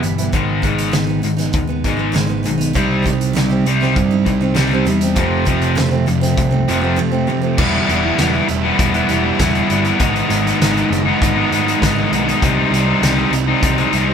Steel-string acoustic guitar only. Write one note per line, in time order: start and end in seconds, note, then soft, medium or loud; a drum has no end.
0.03 0.31 E3 medium
0.03 0.20 G3 medium
0.03 0.18 B3 medium
0.03 0.17 E4 medium
0.18 0.32 G3 medium
0.18 0.32 B3 medium
0.18 0.31 E4 medium
0.32 0.90 G#2 medium
0.32 0.61 D#3 loud
0.32 0.62 G#3 medium
0.32 0.63 B3 medium
0.32 0.64 D#4 medium
0.62 0.92 D#3 medium
0.62 0.92 G#3 medium
0.62 0.93 B3 medium
0.62 0.94 D#4 medium
0.92 1.38 G#2 medium
0.92 1.21 D#3 medium
0.92 1.09 G#3 medium
0.92 1.08 B3 medium
0.92 1.06 D#4 medium
1.07 1.22 G#3 medium
1.07 1.22 B3 medium
1.07 1.23 D#4 medium
1.22 muted steel-string acoustic guitar stroke soft
1.37 1.69 G#3 medium
1.37 1.68 B3 medium
1.37 1.66 D#4 medium
1.67 1.99 G#3 medium
1.67 1.98 B3 medium
1.67 1.95 D#4 medium
1.97 2.12 G#3 medium
1.97 2.13 B3 medium
1.97 2.14 D#4 medium
2.12 2.58 G#2 medium
2.12 2.42 D#3 medium
2.12 2.29 G#3 loud
2.12 2.28 B3 loud
2.12 2.26 D#4 loud
2.27 2.43 G#3 medium
2.27 2.43 B3 medium
2.27 2.44 D#4 medium
2.43 2.72 D#3 medium
2.43 2.60 G#3 medium
2.43 2.58 B3 medium
2.43 2.56 D#4 medium
2.58 2.73 G#3 medium
2.58 2.73 B3 medium
2.58 2.72 D#4 medium
2.73 3.01 C3 medium
2.73 3.03 G3 medium
2.73 3.05 C4 loud
2.73 3.05 D#4 loud
3.03 3.32 C3 medium
3.03 3.33 G3 medium
3.03 3.35 C4 medium
3.03 3.35 D#4 medium
3.33 3.65 C3 medium
3.33 3.51 G3 medium
3.33 3.51 C4 loud
3.33 3.48 D#4 loud
3.49 3.65 G3 medium
3.49 3.66 C4 medium
3.49 3.66 D#4 medium
3.66 muted steel-string acoustic guitar stroke soft
3.81 4.13 G3 medium
3.81 4.11 C4 medium
3.81 4.09 D#4 medium
4.11 4.42 G3 medium
4.11 4.41 C4 medium
4.11 4.39 D#4 medium
4.41 4.55 G3 medium
4.41 4.56 C4 medium
4.41 4.57 D#4 medium
4.55 4.84 C3 medium
4.55 4.73 G3 medium
4.55 4.72 C4 loud
4.55 4.70 D#4 loud
4.71 4.86 G3 medium
4.71 4.87 C4 medium
4.71 4.87 D#4 medium
4.85 5.14 C3 medium
4.85 5.03 G3 medium
4.85 5.01 C4 medium
4.85 5.00 D#4 medium
5.01 5.16 G3 medium
5.01 5.16 C4 medium
5.01 5.15 D#4 medium
5.16 5.74 F2 loud
5.16 5.44 C3 medium
5.16 5.45 F3 loud
5.16 5.47 A3 loud
5.16 5.47 C4 loud
5.45 5.75 C3 medium
5.45 5.76 F3 medium
5.45 5.76 A3 medium
5.45 5.77 C4 medium
5.75 6.22 F2 medium
5.75 6.05 C3 medium
5.75 5.93 F3 loud
5.75 5.92 A3 medium
5.75 5.90 C4 loud
5.91 6.05 F3 medium
5.91 6.06 A3 medium
5.91 6.06 C4 medium
6.06 muted steel-string acoustic guitar stroke soft
6.21 6.53 F3 medium
6.21 6.51 A3 medium
6.21 6.49 C4 medium
6.51 6.83 F3 medium
6.51 6.82 A3 medium
6.51 6.80 C4 medium
6.81 6.97 F3 medium
6.81 6.98 A3 medium
6.81 6.98 C4 medium
6.96 7.43 F2 loud
6.96 7.26 C3 loud
6.96 7.13 F3 loud
6.96 7.12 A3 loud
6.96 7.10 C4 loud
7.11 7.27 F3 medium
7.11 7.28 A3 medium
7.11 7.29 C4 medium
7.27 7.56 C3 medium
7.27 7.43 F3 medium
7.27 7.42 A3 medium
7.27 7.40 C4 medium
7.42 7.57 F3 medium
7.42 7.57 A3 medium
7.42 7.56 C4 medium